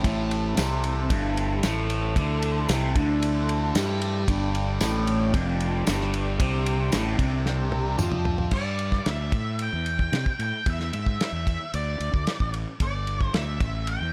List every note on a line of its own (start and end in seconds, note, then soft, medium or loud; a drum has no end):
0.03 0.54 A1 medium
0.03 0.56 A2 medium
0.03 4.24 E3 medium
0.03 4.24 A3 medium
0.03 4.24 C4 medium
0.03 4.24 E4 medium
0.03 4.23 A4 medium
0.03 kick loud
0.03 ride medium
0.31 ride medium
0.57 1.07 C2 medium
0.57 1.10 C3 medium
0.57 snare loud
0.57 ride medium
0.57 tambourine medium
0.84 ride medium
1.10 1.60 G1 medium
1.10 1.63 G2 loud
1.10 kick medium
1.10 ride medium
1.37 ride medium
1.63 2.13 A1 medium
1.63 2.16 A2 loud
1.63 snare loud
1.63 ride medium
1.63 tambourine medium
1.90 ride medium
2.16 2.65 D2 medium
2.16 2.68 D3 loud
2.16 kick loud
2.16 ride medium
2.42 ride medium
2.69 2.94 C2 medium
2.69 2.95 C3 loud
2.69 snare loud
2.69 ride loud
2.69 tambourine medium
2.96 3.71 D2 medium
2.96 3.74 D3 loud
2.96 kick loud
2.96 ride medium
3.23 ride medium
3.49 ride medium
3.75 4.24 G2 loud
3.75 4.27 G3 loud
3.75 snare loud
3.75 ride medium
3.75 tambourine medium
4.02 ride medium
4.28 4.77 G1 medium
4.28 4.80 G2 medium
4.28 8.49 D3 medium
4.28 8.49 G3 medium
4.28 8.49 D4 medium
4.28 8.49 G4 medium
4.28 6.38 D5 medium
4.28 kick loud
4.28 ride medium
4.55 ride medium
4.81 5.31 A1 medium
4.81 5.33 A2 loud
4.81 snare loud
4.81 ride medium
4.81 tambourine medium
5.07 ride medium
5.33 5.83 F1 loud
5.33 5.85 F2 loud
5.33 kick loud
5.33 ride medium
5.60 ride medium
5.86 6.37 G1 medium
5.86 6.38 G2 loud
5.86 snare loud
5.86 ride medium
5.86 tambourine medium
6.01 snare soft
6.14 ride medium
6.39 6.89 C2 medium
6.39 6.92 C3 medium
6.39 8.51 E5 medium
6.39 kick loud
6.39 ride medium
6.66 ride medium
6.92 7.18 A1 medium
6.92 7.18 A2 loud
6.92 snare loud
6.92 ride medium
6.92 tambourine medium
7.18 7.95 C2 medium
7.18 7.97 C3 loud
7.18 kick loud
7.18 ride medium
7.46 snare medium
7.72 high tom medium
7.98 8.49 F2 medium
7.98 8.51 F3 loud
7.98 mid tom medium
7.98 tambourine medium
8.12 mid tom medium
8.25 floor tom loud
8.38 floor tom medium
8.51 8.99 G2 medium
8.51 9.08 D5 medium
8.51 kick medium
8.51 crash medium
8.79 ride medium
8.92 kick medium
8.92 snare soft
9.06 9.30 D2 medium
9.06 9.62 E5 medium
9.06 snare loud
9.06 ride medium
9.32 9.68 A2 medium
9.32 kick medium
9.32 ride medium
9.59 10.42 G5 loud
9.59 ride medium
9.73 10.08 E2 medium
9.86 ride medium
9.99 kick medium
10.12 10.24 C3 medium
10.12 snare loud
10.12 ride medium
10.26 kick medium
10.39 10.51 A2 medium
10.39 10.69 G5 medium
10.39 ride medium
10.66 10.90 E2 medium
10.66 11.21 E5 medium
10.66 kick loud
10.66 ride medium
10.80 snare soft
10.93 11.17 G#2 medium
10.93 ride medium
11.06 kick medium
11.21 11.71 E5 medium
11.21 snare loud
11.21 ride medium
11.32 11.56 E2 medium
11.47 kick medium
11.47 ride medium
11.74 11.97 D2 medium
11.74 12.50 D5 medium
11.74 ride medium
12.00 12.12 D2 medium
12.00 ride medium
12.14 12.25 D2 medium
12.14 kick medium
12.27 snare loud
12.27 ride medium
12.40 12.64 A1 medium
12.40 kick medium
12.54 ride medium
12.80 13.28 G1 medium
12.80 13.34 D5 medium
12.80 kick loud
12.80 ride medium
13.07 ride medium
13.21 kick medium
13.34 13.58 D2 medium
13.34 13.89 E5 medium
13.34 snare loud
13.34 ride medium
13.60 13.96 A1 medium
13.60 kick medium
13.60 ride medium
13.87 14.13 G5 medium
13.87 ride medium
14.01 14.13 E2 medium